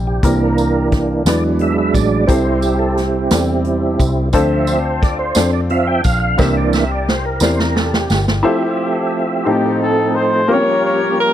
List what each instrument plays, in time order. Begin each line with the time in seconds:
Already playing: fingered electric bass A#1, upright piano C3 G3 C4 E4 G4 C5
0.07 tonewheel organ G4
0.23 fingered electric bass C2, upright piano C3 A#3 C4 E4 G4 A#4, tonewheel organ E3 A#3 D4 A#4, kick, closed hi-hat, tambourine
0.58 closed hi-hat, tambourine
0.92 kick, snare, closed hi-hat
1.26 fingered electric bass E2, upright piano E3 B3 D4 E4 G#4 B4, tonewheel organ F#3 G#3 D4 D5, snare, closed hi-hat, tambourine
1.59 tonewheel organ E5, closed hi-hat
1.78 tonewheel organ E5
1.94 fingered electric bass A1, tonewheel organ D5, kick, closed hi-hat, tambourine
2.27 fingered electric bass C2, upright piano C3 C4 E4 G4 A4 C5, tonewheel organ G3 C4 E4 C5, kick, closed hi-hat, tambourine
2.61 tonewheel organ G4, closed hi-hat, tambourine
2.79 tonewheel organ A4
2.95 tonewheel organ G4, snare, closed hi-hat
3.31 fingered electric bass E2, upright piano C4 E4 G4 A4 D5, snare, closed hi-hat, tambourine
3.65 closed hi-hat
4.00 fingered electric bass C2, kick, closed hi-hat, tambourine
4.33 fingered electric bass D2, upright piano D3 C4 D4 F4 A4 C5, tonewheel organ F3 C4 E5, kick, closed hi-hat, tambourine
4.67 tonewheel organ C5, closed hi-hat, tambourine
4.85 tonewheel organ C5
5.02 tonewheel organ D5, kick, snare, closed hi-hat
5.19 tonewheel organ C5
5.35 fingered electric bass F2, upright piano C4 D4 F4 A4 D5, snare, closed hi-hat, tambourine
5.53 tonewheel organ D5
5.70 tonewheel organ F3 C4 E5 F5, closed hi-hat
5.87 tonewheel organ G5
6.04 fingered electric bass A#1, tonewheel organ F5, kick, closed hi-hat, tambourine
6.20 tonewheel organ F5
6.38 fingered electric bass C2, upright piano C3 C4 E4 G4 A#4 C5, tonewheel organ E3 A#3 D4 E5, kick, snare, tambourine
6.57 tonewheel organ D5
6.73 tonewheel organ E5, snare, tambourine
6.91 tonewheel organ D5
7.08 tonewheel organ C5, snare
7.25 tonewheel organ A#4
7.40 fingered electric bass E2, upright piano C4 E4 G4 A#4 D5, tonewheel organ C5, snare, tambourine
7.59 tonewheel organ A#4, snare
7.75 tonewheel organ A4, snare
7.94 tonewheel organ G4, snare
8.10 fingered electric bass G1, snare, tambourine
8.28 snare
8.43 tonewheel organ F3 A3 C4 F4 E5, upright piano E4 F4 G4 A4 C5
8.51 tonewheel organ G4
9.45 upright piano A2 C4 D#4 F4 A4 C5, tonewheel organ A2 F3 A3 C4 D#4 A4, horn section C4 D#4 G4
9.82 horn section A4
10.16 horn section C5
10.47 tonewheel organ F3 G3 A#3 C#4 G4, upright piano A#3 C4 F4 G4 A#4
10.51 upright piano C#4, horn section G4 A#4 C#5
10.86 horn section C#5
11.20 horn section A#4